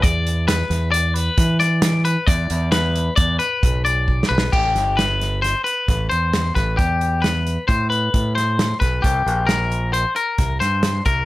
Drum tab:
CC |------------------------------|------------------------------|x-----------------------------|------------------------------|
HH |x--x--x--x--x--x--x--x--x--x--|x--x--x--x--x--x--x--x--------|---x--x--x--x--x--x--x--x--x--|x--x--x--x--x--x--x--x--x--x--|
SD |------o--o--------o--o--o-----|------o-------------------o-o-|---o--o--o--o-----o-----o--o--|------o--------------o--o--o--|
BD |o-----------------o-----------|o-----------o-----o-----o-----|o-----------------o--------o--|o-----------o-----o--------o--|

CC |------------------------------|
HH |x--x--x--x--x--x--x--x--x--x--|
SD |------o-----------o--o--o-----|
BD |o-----------------o--------o--|